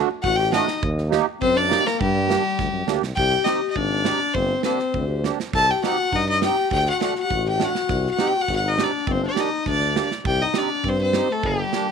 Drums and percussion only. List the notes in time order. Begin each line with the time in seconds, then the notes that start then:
0.24 kick
0.53 snare
0.68 snare
0.83 kick
0.98 snare
1.12 snare
1.42 kick
1.57 snare
1.72 snare
1.87 snare
2.01 kick
2.30 snare
2.59 kick, snare
2.88 snare
3.03 snare
3.17 kick
3.46 snare
3.76 kick
4.05 snare
4.35 kick
4.63 snare
4.79 snare
4.94 kick
5.24 snare
5.40 snare
5.53 kick
5.84 snare
6.13 kick, snare
6.42 snare
6.71 kick
7.01 snare
7.16 snare
7.30 kick
7.60 snare
7.75 snare
7.89 kick, snare
8.19 snare
8.48 kick, snare
8.79 snare
9.07 kick
9.36 snare
9.66 kick, snare
9.81 snare
9.96 snare
10.11 snare
10.25 kick
10.54 snare
10.84 kick
11.13 snare
11.43 kick
11.73 snare